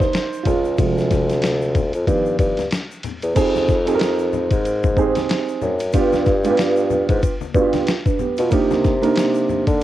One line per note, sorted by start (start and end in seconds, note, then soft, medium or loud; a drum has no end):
0.00 0.42 D#4 medium
0.00 0.47 C5 loud
0.00 kick medium
0.00 snare soft
0.00 high conga medium
0.00 shaker soft
0.13 snare loud
0.13 hi-hat pedal soft
0.13 ride medium
0.13 shaker medium
0.33 shaker soft
0.43 0.74 C#2 medium
0.43 2.34 F4 medium
0.43 2.36 G#4 medium
0.43 kick medium
0.43 ride medium
0.43 low conga medium
0.43 shaker soft
0.64 shaker soft
0.78 1.90 D2 loud
0.78 1.71 C3 medium
0.78 1.71 F3 medium
0.78 1.71 G#3 medium
0.78 kick loud
0.78 ride medium
0.78 shaker medium
0.98 snare soft
0.98 shaker soft
1.11 kick medium
1.11 snare soft
1.11 ride medium
1.11 low conga medium
1.11 shaker soft
1.29 snare soft
1.29 ride soft
1.29 shaker soft
1.42 snare loud
1.42 hi-hat pedal soft
1.42 ride medium
1.42 shaker medium
1.61 shaker soft
1.75 kick medium
1.75 ride medium
1.75 low conga medium
1.75 shaker soft
1.93 2.05 F2 medium
1.93 ride soft
1.93 shaker soft
2.06 2.35 G2 medium
2.06 2.52 D#3 medium
2.06 2.52 F3 soft
2.06 2.52 B3 medium
2.06 kick medium
2.06 ride soft
2.06 shaker medium
2.26 shaker soft
2.39 2.67 G2 medium
2.39 kick medium
2.39 ride medium
2.39 shaker soft
2.57 snare soft
2.57 ride soft
2.57 high conga medium
2.57 shaker soft
2.71 snare loud
2.71 hi-hat pedal soft
2.71 ride medium
2.71 shaker medium
2.91 shaker soft
3.03 ride medium
3.03 low conga medium
3.03 shaker soft
3.22 3.34 E2 medium
3.22 ride soft
3.22 shaker soft
3.34 4.47 F2 loud
3.34 3.73 C4 medium
3.34 3.73 D#4 medium
3.34 3.74 G4 medium
3.34 3.74 G#4 medium
3.34 kick loud
3.34 crash medium
3.34 ride medium
3.34 shaker medium
3.56 snare soft
3.56 high conga medium
3.56 shaker soft
3.68 kick medium
3.68 snare soft
3.68 shaker soft
3.86 4.70 C4 medium
3.86 4.71 D#4 medium
3.86 4.71 G4 medium
3.86 3.93 G#4 medium
3.86 ride medium
3.86 shaker soft
3.95 4.75 A#4 loud
4.00 snare loud
4.00 hi-hat pedal medium
4.00 ride medium
4.00 shaker medium
4.19 shaker soft
4.33 low conga medium
4.33 shaker medium
4.51 5.26 G#2 medium
4.51 kick loud
4.51 ride medium
4.51 shaker soft
4.65 ride medium
4.65 shaker medium
4.84 kick medium
4.84 high conga medium
4.84 shaker soft
4.96 5.72 C4 medium
4.96 5.72 D#4 medium
4.96 5.72 G4 medium
4.96 5.73 G#4 medium
4.96 kick medium
4.96 shaker soft
5.15 snare soft
5.15 ride medium
5.15 high conga medium
5.15 shaker soft
5.29 snare loud
5.29 hi-hat pedal soft
5.29 ride medium
5.29 shaker medium
5.48 shaker soft
5.62 5.90 F#2 medium
5.62 low conga medium
5.62 shaker soft
5.79 ride medium
5.79 shaker medium
5.93 7.05 G2 loud
5.93 6.31 B3 medium
5.93 6.31 D4 medium
5.93 6.32 F4 medium
5.93 6.32 G4 medium
5.93 kick loud
5.93 ride medium
5.93 shaker medium
6.13 snare soft
6.13 high conga medium
6.13 shaker soft
6.26 kick medium
6.26 snare soft
6.26 shaker soft
6.44 6.50 G#3 medium
6.44 7.29 D4 medium
6.44 7.29 F4 medium
6.44 7.30 G4 medium
6.44 ride medium
6.44 shaker soft
6.50 7.31 B3 medium
6.57 snare loud
6.57 hi-hat pedal medium
6.57 ride medium
6.57 shaker medium
6.76 shaker soft
6.90 low conga medium
6.90 shaker soft
7.09 7.21 G#2 medium
7.09 kick medium
7.09 ride medium
7.09 shaker soft
7.23 kick medium
7.23 ride medium
7.23 shaker medium
7.41 high conga medium
7.41 shaker soft
7.54 7.83 G2 medium
7.54 7.87 B3 medium
7.54 7.88 D4 medium
7.54 7.88 F4 medium
7.54 7.64 F#4 medium
7.54 kick medium
7.54 shaker soft
7.63 7.92 G4 medium
7.73 snare soft
7.73 ride medium
7.73 high conga medium
7.73 shaker soft
7.87 snare loud
7.87 hi-hat pedal soft
7.87 ride medium
7.87 shaker medium
8.06 8.19 D4 medium
8.06 8.19 B4 medium
8.06 kick loud
8.06 shaker soft
8.19 8.38 B3 medium
8.19 8.38 G4 medium
8.19 low conga medium
8.19 shaker soft
8.37 8.51 B2 medium
8.37 8.69 F4 medium
8.37 ride medium
8.37 shaker soft
8.50 9.63 C3 medium
8.50 8.88 A#3 medium
8.50 8.89 D4 medium
8.50 8.89 D#4 medium
8.50 8.90 G4 medium
8.50 kick medium
8.50 ride medium
8.50 shaker medium
8.71 snare soft
8.71 high conga medium
8.71 shaker soft
8.84 kick medium
8.84 snare soft
8.84 shaker soft
9.02 9.84 A#3 medium
9.02 9.84 D4 medium
9.02 9.84 D#4 medium
9.02 9.84 A#4 medium
9.02 ride soft
9.02 shaker soft
9.15 snare loud
9.15 hi-hat pedal medium
9.15 ride medium
9.15 shaker medium
9.34 shaker soft
9.49 low conga medium
9.49 shaker soft
9.67 9.84 D3 medium
9.67 kick loud
9.67 ride medium
9.67 shaker soft